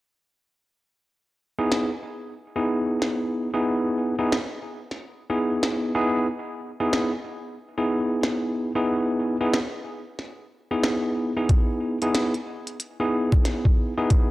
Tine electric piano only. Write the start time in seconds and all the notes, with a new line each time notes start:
1.59 B3 D#4 E4 G#4
2.56 B3 D#4 E4 G#4
3.54 B3 D#4 E4 G#4
4.19 B3 D#4 E4 G#4
5.30 B3 D#4 E4 G#4
5.95 B3 D#4 E4 G#4
6.80 B3 D#4 E4 G#4
7.78 B3 D#4 E4 G#4
8.75 B3 D#4 E4 G#4
9.41 B3 D#4 E4 G#4
10.71 B3 D#4 E4 G#4
11.37 B3 D#4 E4 G#4
12.02 B3 D#4 E4 G#4
13.00 B3 D#4 E4 G#4
13.98 B3 D#4 E4 G#4